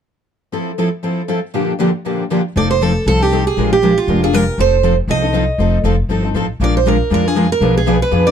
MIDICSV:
0, 0, Header, 1, 4, 480
1, 0, Start_track
1, 0, Tempo, 253165
1, 990, Time_signature, 4, 2, 24, 8
1, 15758, End_track
2, 0, Start_track
2, 0, Title_t, "Steel-string acoustic guitar"
2, 0, Program_c, 0, 25
2, 4877, Note_on_c, 0, 74, 74
2, 5105, Note_off_c, 0, 74, 0
2, 5130, Note_on_c, 0, 72, 68
2, 5358, Note_off_c, 0, 72, 0
2, 5358, Note_on_c, 0, 69, 67
2, 5810, Note_off_c, 0, 69, 0
2, 5833, Note_on_c, 0, 69, 80
2, 6113, Note_off_c, 0, 69, 0
2, 6113, Note_on_c, 0, 67, 75
2, 6569, Note_off_c, 0, 67, 0
2, 6578, Note_on_c, 0, 68, 71
2, 7055, Note_off_c, 0, 68, 0
2, 7065, Note_on_c, 0, 67, 72
2, 7539, Note_off_c, 0, 67, 0
2, 7539, Note_on_c, 0, 65, 70
2, 7969, Note_off_c, 0, 65, 0
2, 8034, Note_on_c, 0, 68, 74
2, 8236, Note_off_c, 0, 68, 0
2, 8236, Note_on_c, 0, 70, 71
2, 8712, Note_off_c, 0, 70, 0
2, 8731, Note_on_c, 0, 72, 90
2, 9397, Note_off_c, 0, 72, 0
2, 9682, Note_on_c, 0, 75, 87
2, 11022, Note_off_c, 0, 75, 0
2, 12584, Note_on_c, 0, 74, 74
2, 12817, Note_off_c, 0, 74, 0
2, 12833, Note_on_c, 0, 72, 61
2, 13007, Note_off_c, 0, 72, 0
2, 13051, Note_on_c, 0, 70, 63
2, 13468, Note_off_c, 0, 70, 0
2, 13539, Note_on_c, 0, 70, 76
2, 13795, Note_off_c, 0, 70, 0
2, 13795, Note_on_c, 0, 68, 74
2, 14253, Note_off_c, 0, 68, 0
2, 14261, Note_on_c, 0, 70, 78
2, 14683, Note_off_c, 0, 70, 0
2, 14741, Note_on_c, 0, 68, 74
2, 15203, Note_off_c, 0, 68, 0
2, 15210, Note_on_c, 0, 71, 78
2, 15675, Note_on_c, 0, 74, 78
2, 15681, Note_off_c, 0, 71, 0
2, 15758, Note_off_c, 0, 74, 0
2, 15758, End_track
3, 0, Start_track
3, 0, Title_t, "Steel-string acoustic guitar"
3, 0, Program_c, 1, 25
3, 991, Note_on_c, 1, 53, 48
3, 995, Note_on_c, 1, 60, 54
3, 1010, Note_on_c, 1, 64, 49
3, 1012, Note_on_c, 1, 69, 61
3, 1330, Note_off_c, 1, 53, 0
3, 1332, Note_off_c, 1, 60, 0
3, 1339, Note_off_c, 1, 64, 0
3, 1340, Note_off_c, 1, 69, 0
3, 1478, Note_on_c, 1, 53, 68
3, 1482, Note_on_c, 1, 60, 61
3, 1493, Note_on_c, 1, 64, 67
3, 1498, Note_on_c, 1, 69, 67
3, 1663, Note_off_c, 1, 53, 0
3, 1665, Note_off_c, 1, 60, 0
3, 1670, Note_off_c, 1, 64, 0
3, 1673, Note_off_c, 1, 69, 0
3, 1947, Note_on_c, 1, 53, 47
3, 1968, Note_on_c, 1, 60, 47
3, 1968, Note_on_c, 1, 64, 55
3, 1973, Note_on_c, 1, 69, 48
3, 2290, Note_off_c, 1, 53, 0
3, 2300, Note_off_c, 1, 60, 0
3, 2300, Note_off_c, 1, 64, 0
3, 2302, Note_off_c, 1, 69, 0
3, 2430, Note_on_c, 1, 53, 68
3, 2436, Note_on_c, 1, 60, 71
3, 2449, Note_on_c, 1, 64, 71
3, 2456, Note_on_c, 1, 69, 68
3, 2620, Note_off_c, 1, 53, 0
3, 2623, Note_off_c, 1, 60, 0
3, 2630, Note_off_c, 1, 64, 0
3, 2634, Note_off_c, 1, 69, 0
3, 2917, Note_on_c, 1, 46, 54
3, 2920, Note_on_c, 1, 50, 48
3, 2926, Note_on_c, 1, 53, 54
3, 2936, Note_on_c, 1, 58, 54
3, 2937, Note_on_c, 1, 62, 58
3, 2942, Note_on_c, 1, 67, 67
3, 3256, Note_off_c, 1, 46, 0
3, 3258, Note_off_c, 1, 50, 0
3, 3261, Note_off_c, 1, 53, 0
3, 3265, Note_off_c, 1, 58, 0
3, 3266, Note_off_c, 1, 62, 0
3, 3269, Note_off_c, 1, 67, 0
3, 3387, Note_on_c, 1, 46, 72
3, 3400, Note_on_c, 1, 50, 69
3, 3403, Note_on_c, 1, 53, 74
3, 3411, Note_on_c, 1, 58, 75
3, 3415, Note_on_c, 1, 62, 76
3, 3421, Note_on_c, 1, 67, 79
3, 3580, Note_off_c, 1, 46, 0
3, 3587, Note_off_c, 1, 50, 0
3, 3589, Note_off_c, 1, 53, 0
3, 3593, Note_off_c, 1, 58, 0
3, 3594, Note_off_c, 1, 62, 0
3, 3597, Note_off_c, 1, 67, 0
3, 3883, Note_on_c, 1, 46, 48
3, 3898, Note_on_c, 1, 50, 52
3, 3903, Note_on_c, 1, 53, 54
3, 3904, Note_on_c, 1, 58, 53
3, 3906, Note_on_c, 1, 62, 54
3, 3910, Note_on_c, 1, 67, 56
3, 4220, Note_off_c, 1, 46, 0
3, 4228, Note_off_c, 1, 50, 0
3, 4230, Note_off_c, 1, 53, 0
3, 4231, Note_off_c, 1, 58, 0
3, 4231, Note_off_c, 1, 62, 0
3, 4234, Note_off_c, 1, 67, 0
3, 4365, Note_on_c, 1, 46, 62
3, 4371, Note_on_c, 1, 50, 68
3, 4377, Note_on_c, 1, 53, 68
3, 4379, Note_on_c, 1, 58, 65
3, 4387, Note_on_c, 1, 62, 70
3, 4392, Note_on_c, 1, 67, 78
3, 4550, Note_off_c, 1, 46, 0
3, 4553, Note_off_c, 1, 50, 0
3, 4556, Note_off_c, 1, 53, 0
3, 4558, Note_off_c, 1, 58, 0
3, 4561, Note_off_c, 1, 62, 0
3, 4564, Note_off_c, 1, 67, 0
3, 4856, Note_on_c, 1, 53, 55
3, 4863, Note_on_c, 1, 60, 63
3, 4864, Note_on_c, 1, 63, 59
3, 4878, Note_on_c, 1, 69, 66
3, 5187, Note_off_c, 1, 53, 0
3, 5191, Note_off_c, 1, 60, 0
3, 5191, Note_off_c, 1, 63, 0
3, 5198, Note_off_c, 1, 69, 0
3, 5340, Note_on_c, 1, 53, 77
3, 5348, Note_on_c, 1, 60, 71
3, 5354, Note_on_c, 1, 63, 79
3, 5366, Note_on_c, 1, 69, 83
3, 5518, Note_off_c, 1, 53, 0
3, 5522, Note_off_c, 1, 60, 0
3, 5526, Note_off_c, 1, 63, 0
3, 5532, Note_off_c, 1, 69, 0
3, 5825, Note_on_c, 1, 53, 53
3, 5839, Note_on_c, 1, 60, 55
3, 5842, Note_on_c, 1, 63, 54
3, 5856, Note_on_c, 1, 69, 56
3, 6047, Note_off_c, 1, 69, 0
3, 6066, Note_off_c, 1, 53, 0
3, 6070, Note_on_c, 1, 69, 47
3, 6073, Note_off_c, 1, 60, 0
3, 6074, Note_off_c, 1, 63, 0
3, 6102, Note_on_c, 1, 63, 40
3, 6113, Note_on_c, 1, 60, 43
3, 6276, Note_off_c, 1, 69, 0
3, 6279, Note_off_c, 1, 60, 0
3, 6286, Note_off_c, 1, 63, 0
3, 6294, Note_on_c, 1, 53, 69
3, 6302, Note_on_c, 1, 60, 78
3, 6308, Note_on_c, 1, 63, 80
3, 6317, Note_on_c, 1, 69, 82
3, 6475, Note_off_c, 1, 53, 0
3, 6480, Note_off_c, 1, 60, 0
3, 6483, Note_off_c, 1, 63, 0
3, 6487, Note_off_c, 1, 69, 0
3, 6785, Note_on_c, 1, 53, 55
3, 6796, Note_on_c, 1, 62, 57
3, 6798, Note_on_c, 1, 56, 61
3, 6804, Note_on_c, 1, 65, 69
3, 6816, Note_on_c, 1, 70, 62
3, 7112, Note_off_c, 1, 53, 0
3, 7117, Note_off_c, 1, 62, 0
3, 7118, Note_off_c, 1, 56, 0
3, 7121, Note_off_c, 1, 65, 0
3, 7128, Note_off_c, 1, 70, 0
3, 7249, Note_on_c, 1, 53, 74
3, 7259, Note_on_c, 1, 56, 76
3, 7267, Note_on_c, 1, 62, 75
3, 7276, Note_on_c, 1, 65, 78
3, 7276, Note_on_c, 1, 70, 80
3, 7433, Note_off_c, 1, 53, 0
3, 7438, Note_off_c, 1, 56, 0
3, 7442, Note_off_c, 1, 62, 0
3, 7446, Note_off_c, 1, 65, 0
3, 7447, Note_off_c, 1, 70, 0
3, 7739, Note_on_c, 1, 53, 52
3, 7742, Note_on_c, 1, 56, 53
3, 7752, Note_on_c, 1, 62, 57
3, 7755, Note_on_c, 1, 65, 56
3, 7766, Note_on_c, 1, 70, 57
3, 7975, Note_off_c, 1, 70, 0
3, 7983, Note_off_c, 1, 53, 0
3, 7984, Note_off_c, 1, 56, 0
3, 7989, Note_off_c, 1, 62, 0
3, 7990, Note_off_c, 1, 65, 0
3, 7998, Note_on_c, 1, 70, 47
3, 8013, Note_on_c, 1, 65, 44
3, 8037, Note_on_c, 1, 62, 45
3, 8197, Note_off_c, 1, 62, 0
3, 8199, Note_off_c, 1, 70, 0
3, 8207, Note_off_c, 1, 65, 0
3, 8211, Note_on_c, 1, 53, 77
3, 8218, Note_on_c, 1, 56, 72
3, 8220, Note_on_c, 1, 62, 80
3, 8227, Note_on_c, 1, 65, 85
3, 8232, Note_on_c, 1, 70, 77
3, 8393, Note_off_c, 1, 53, 0
3, 8397, Note_off_c, 1, 56, 0
3, 8398, Note_off_c, 1, 62, 0
3, 8402, Note_off_c, 1, 65, 0
3, 8404, Note_off_c, 1, 70, 0
3, 8690, Note_on_c, 1, 53, 61
3, 8701, Note_on_c, 1, 60, 63
3, 8707, Note_on_c, 1, 63, 65
3, 8719, Note_on_c, 1, 69, 70
3, 9024, Note_off_c, 1, 53, 0
3, 9029, Note_off_c, 1, 60, 0
3, 9032, Note_off_c, 1, 63, 0
3, 9038, Note_off_c, 1, 69, 0
3, 9161, Note_on_c, 1, 53, 80
3, 9172, Note_on_c, 1, 60, 76
3, 9173, Note_on_c, 1, 63, 74
3, 9186, Note_on_c, 1, 69, 81
3, 9348, Note_off_c, 1, 53, 0
3, 9354, Note_off_c, 1, 60, 0
3, 9354, Note_off_c, 1, 63, 0
3, 9360, Note_off_c, 1, 69, 0
3, 9638, Note_on_c, 1, 53, 54
3, 9651, Note_on_c, 1, 60, 61
3, 9658, Note_on_c, 1, 63, 64
3, 9668, Note_on_c, 1, 69, 55
3, 9875, Note_off_c, 1, 69, 0
3, 9890, Note_off_c, 1, 53, 0
3, 9897, Note_off_c, 1, 60, 0
3, 9898, Note_on_c, 1, 69, 53
3, 9901, Note_off_c, 1, 63, 0
3, 9925, Note_on_c, 1, 63, 50
3, 9950, Note_on_c, 1, 60, 41
3, 10090, Note_off_c, 1, 60, 0
3, 10098, Note_off_c, 1, 63, 0
3, 10103, Note_on_c, 1, 53, 78
3, 10108, Note_off_c, 1, 69, 0
3, 10113, Note_on_c, 1, 60, 74
3, 10120, Note_on_c, 1, 63, 82
3, 10131, Note_on_c, 1, 69, 80
3, 10298, Note_off_c, 1, 53, 0
3, 10303, Note_off_c, 1, 60, 0
3, 10307, Note_off_c, 1, 63, 0
3, 10312, Note_off_c, 1, 69, 0
3, 10591, Note_on_c, 1, 53, 57
3, 10603, Note_on_c, 1, 60, 60
3, 10615, Note_on_c, 1, 63, 58
3, 10615, Note_on_c, 1, 69, 63
3, 10932, Note_off_c, 1, 53, 0
3, 10938, Note_off_c, 1, 60, 0
3, 10944, Note_off_c, 1, 63, 0
3, 10944, Note_off_c, 1, 69, 0
3, 11072, Note_on_c, 1, 53, 73
3, 11080, Note_on_c, 1, 60, 74
3, 11090, Note_on_c, 1, 63, 78
3, 11098, Note_on_c, 1, 69, 81
3, 11261, Note_off_c, 1, 53, 0
3, 11265, Note_off_c, 1, 60, 0
3, 11270, Note_off_c, 1, 63, 0
3, 11274, Note_off_c, 1, 69, 0
3, 11548, Note_on_c, 1, 53, 53
3, 11556, Note_on_c, 1, 60, 51
3, 11574, Note_on_c, 1, 63, 58
3, 11580, Note_on_c, 1, 69, 60
3, 11786, Note_off_c, 1, 69, 0
3, 11803, Note_off_c, 1, 53, 0
3, 11807, Note_off_c, 1, 60, 0
3, 11809, Note_on_c, 1, 69, 45
3, 11816, Note_off_c, 1, 63, 0
3, 11837, Note_on_c, 1, 63, 42
3, 11851, Note_on_c, 1, 60, 40
3, 12015, Note_off_c, 1, 60, 0
3, 12021, Note_off_c, 1, 69, 0
3, 12029, Note_on_c, 1, 53, 68
3, 12030, Note_off_c, 1, 63, 0
3, 12038, Note_on_c, 1, 60, 73
3, 12053, Note_on_c, 1, 63, 78
3, 12058, Note_on_c, 1, 69, 72
3, 12218, Note_off_c, 1, 53, 0
3, 12223, Note_off_c, 1, 60, 0
3, 12231, Note_off_c, 1, 63, 0
3, 12233, Note_off_c, 1, 69, 0
3, 12526, Note_on_c, 1, 53, 58
3, 12539, Note_on_c, 1, 56, 58
3, 12543, Note_on_c, 1, 62, 62
3, 12545, Note_on_c, 1, 65, 60
3, 12556, Note_on_c, 1, 70, 57
3, 12857, Note_off_c, 1, 53, 0
3, 12863, Note_off_c, 1, 56, 0
3, 12865, Note_off_c, 1, 62, 0
3, 12866, Note_off_c, 1, 65, 0
3, 12872, Note_off_c, 1, 70, 0
3, 13002, Note_on_c, 1, 53, 73
3, 13003, Note_on_c, 1, 56, 73
3, 13018, Note_on_c, 1, 62, 75
3, 13024, Note_on_c, 1, 65, 81
3, 13027, Note_on_c, 1, 70, 74
3, 13183, Note_off_c, 1, 53, 0
3, 13184, Note_off_c, 1, 56, 0
3, 13191, Note_off_c, 1, 62, 0
3, 13194, Note_off_c, 1, 65, 0
3, 13196, Note_off_c, 1, 70, 0
3, 13463, Note_on_c, 1, 53, 58
3, 13470, Note_on_c, 1, 56, 57
3, 13480, Note_on_c, 1, 65, 59
3, 13481, Note_on_c, 1, 62, 62
3, 13492, Note_on_c, 1, 70, 59
3, 13707, Note_off_c, 1, 70, 0
3, 13718, Note_off_c, 1, 53, 0
3, 13721, Note_off_c, 1, 56, 0
3, 13726, Note_off_c, 1, 65, 0
3, 13727, Note_off_c, 1, 62, 0
3, 13730, Note_on_c, 1, 70, 45
3, 13754, Note_on_c, 1, 65, 40
3, 13774, Note_on_c, 1, 62, 38
3, 13932, Note_off_c, 1, 62, 0
3, 13937, Note_on_c, 1, 53, 69
3, 13939, Note_off_c, 1, 70, 0
3, 13941, Note_off_c, 1, 65, 0
3, 13950, Note_on_c, 1, 56, 70
3, 13955, Note_on_c, 1, 62, 80
3, 13963, Note_on_c, 1, 65, 76
3, 13968, Note_on_c, 1, 70, 79
3, 14130, Note_off_c, 1, 53, 0
3, 14136, Note_off_c, 1, 56, 0
3, 14138, Note_off_c, 1, 62, 0
3, 14143, Note_off_c, 1, 65, 0
3, 14145, Note_off_c, 1, 70, 0
3, 14431, Note_on_c, 1, 47, 63
3, 14435, Note_on_c, 1, 53, 61
3, 14439, Note_on_c, 1, 59, 62
3, 14453, Note_on_c, 1, 62, 63
3, 14458, Note_on_c, 1, 68, 65
3, 14458, Note_on_c, 1, 71, 65
3, 14767, Note_off_c, 1, 47, 0
3, 14768, Note_off_c, 1, 53, 0
3, 14771, Note_off_c, 1, 59, 0
3, 14777, Note_off_c, 1, 62, 0
3, 14780, Note_off_c, 1, 68, 0
3, 14780, Note_off_c, 1, 71, 0
3, 14903, Note_on_c, 1, 47, 71
3, 14905, Note_on_c, 1, 53, 77
3, 14914, Note_on_c, 1, 59, 71
3, 14917, Note_on_c, 1, 62, 79
3, 14924, Note_on_c, 1, 68, 82
3, 14932, Note_on_c, 1, 71, 76
3, 15091, Note_off_c, 1, 47, 0
3, 15092, Note_off_c, 1, 53, 0
3, 15097, Note_off_c, 1, 59, 0
3, 15098, Note_off_c, 1, 62, 0
3, 15102, Note_off_c, 1, 68, 0
3, 15106, Note_off_c, 1, 71, 0
3, 15375, Note_on_c, 1, 47, 57
3, 15382, Note_on_c, 1, 53, 52
3, 15383, Note_on_c, 1, 59, 54
3, 15386, Note_on_c, 1, 62, 58
3, 15394, Note_on_c, 1, 68, 61
3, 15399, Note_on_c, 1, 71, 59
3, 15625, Note_off_c, 1, 71, 0
3, 15631, Note_off_c, 1, 47, 0
3, 15635, Note_off_c, 1, 53, 0
3, 15635, Note_off_c, 1, 59, 0
3, 15637, Note_off_c, 1, 62, 0
3, 15640, Note_off_c, 1, 68, 0
3, 15647, Note_on_c, 1, 71, 50
3, 15662, Note_on_c, 1, 68, 46
3, 15676, Note_on_c, 1, 62, 47
3, 15694, Note_on_c, 1, 59, 38
3, 15758, Note_off_c, 1, 59, 0
3, 15758, Note_off_c, 1, 62, 0
3, 15758, Note_off_c, 1, 68, 0
3, 15758, Note_off_c, 1, 71, 0
3, 15758, End_track
4, 0, Start_track
4, 0, Title_t, "Upright bass"
4, 0, Program_c, 2, 32
4, 4847, Note_on_c, 2, 29, 75
4, 5613, Note_off_c, 2, 29, 0
4, 5801, Note_on_c, 2, 36, 66
4, 6570, Note_off_c, 2, 36, 0
4, 6768, Note_on_c, 2, 34, 76
4, 7533, Note_off_c, 2, 34, 0
4, 7720, Note_on_c, 2, 29, 76
4, 8488, Note_off_c, 2, 29, 0
4, 8680, Note_on_c, 2, 29, 72
4, 9447, Note_off_c, 2, 29, 0
4, 9623, Note_on_c, 2, 36, 75
4, 10396, Note_off_c, 2, 36, 0
4, 10583, Note_on_c, 2, 29, 74
4, 10972, Note_off_c, 2, 29, 0
4, 11062, Note_on_c, 2, 29, 73
4, 11475, Note_off_c, 2, 29, 0
4, 11540, Note_on_c, 2, 31, 70
4, 11953, Note_off_c, 2, 31, 0
4, 12023, Note_on_c, 2, 33, 67
4, 12435, Note_off_c, 2, 33, 0
4, 12507, Note_on_c, 2, 34, 71
4, 13275, Note_off_c, 2, 34, 0
4, 13470, Note_on_c, 2, 41, 71
4, 14236, Note_off_c, 2, 41, 0
4, 14421, Note_on_c, 2, 35, 72
4, 15189, Note_off_c, 2, 35, 0
4, 15387, Note_on_c, 2, 41, 69
4, 15758, Note_off_c, 2, 41, 0
4, 15758, End_track
0, 0, End_of_file